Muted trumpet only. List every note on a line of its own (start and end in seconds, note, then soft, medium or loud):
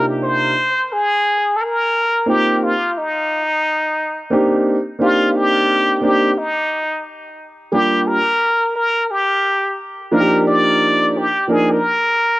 0.24 0.94 C5 loud
0.93 1.57 G#4 loud
1.56 1.63 A4 medium
1.61 2.29 A#4 medium
2.29 2.65 G4 loud
2.63 2.99 F4 medium
2.98 4.33 D#4 medium
5.03 5.38 F4 loud
5.36 6.04 G4 loud
6.05 6.39 G4 loud
6.38 7.06 D#4 medium
7.74 8.09 G4 loud
8.08 8.75 A#4 loud
8.76 9.12 A#4 medium
9.11 9.78 G4 medium
10.13 10.44 A#4 loud
10.47 11.19 D5 loud
11.18 11.53 G4 medium
11.51 11.75 G#4 medium
11.73 12.40 A#4 medium